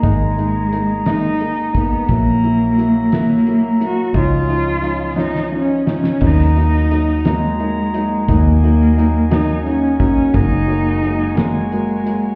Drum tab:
CC |------------|------------|------------|x-----------|
HH |x-x-x-x-x-x-|x-x-x-x-x-x-|x-x-x-------|--x-x-x-x-x-|
SD |------o-----|------o-----|------oo--oo|------o-----|
BD |o---------o-|o-----------|o-----------|o-----------|

CC |------------|------------|
HH |x-x-x-x-x-x-|x-x-x-x-x-x-|
SD |------o-----|------o-----|
BD |o---------o-|o-----------|